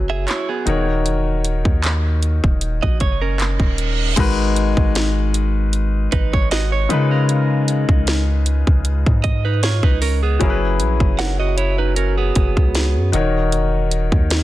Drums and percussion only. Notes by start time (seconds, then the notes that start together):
0.28 clap, closed hi-hat
0.67 closed hi-hat
1.06 closed hi-hat
1.45 closed hi-hat
1.65 kick
1.84 clap, closed hi-hat
2.23 closed hi-hat
2.44 kick
2.61 closed hi-hat
2.83 kick
3.00 kick, closed hi-hat
3.40 clap, closed hi-hat
3.60 kick
3.78 closed hi-hat
4.17 kick, closed hi-hat, crash
4.56 closed hi-hat
4.77 kick
4.95 snare, closed hi-hat
5.34 closed hi-hat
5.73 closed hi-hat
6.12 kick, closed hi-hat
6.33 kick
6.51 snare, closed hi-hat
6.90 closed hi-hat
7.29 closed hi-hat
7.68 closed hi-hat
7.89 kick
8.07 snare, closed hi-hat
8.46 closed hi-hat
8.67 kick
8.85 closed hi-hat
9.06 kick
9.24 kick, closed hi-hat
9.63 snare, closed hi-hat
9.83 kick
10.02 open hi-hat
10.41 kick, closed hi-hat
10.80 closed hi-hat
11.00 kick
11.19 snare, closed hi-hat
11.58 closed hi-hat
11.96 closed hi-hat
12.35 kick, closed hi-hat
12.57 kick
12.75 snare, closed hi-hat
13.13 closed hi-hat
13.52 closed hi-hat
13.91 closed hi-hat
14.12 kick
14.30 snare, closed hi-hat